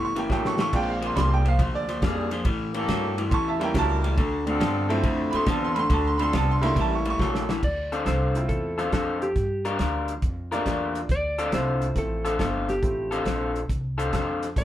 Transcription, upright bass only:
Already playing: G1
0.30 A1
0.73 A#1
1.16 C2
1.59 D2
2.02 F2
2.45 A2
2.88 G2
3.31 E2
3.74 C#2
4.18 D2
4.60 G2
5.04 F2
5.33 muted upright bass stroke
5.47 E2
5.90 D2
6.33 C2
6.76 A1
7.19 A#1
7.63 D2
8.06 C2
8.49 E2
8.92 F2
9.35 G2
9.79 D2
10.23 F2
10.66 E2
11.09 D2
11.52 C2
11.96 A1
12.39 G1
12.82 A1
13.25 A#1
13.70 C2
14.13 F2
14.56 G2

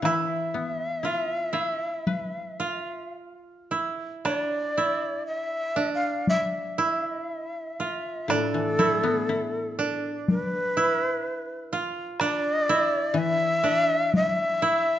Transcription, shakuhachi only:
0.03 F5
0.08 E5
4.26 D5
5.27 E5
5.95 F5
6.29 E5
8.32 A4
10.30 B4
12.21 D5
13.18 E5
14.16 E5

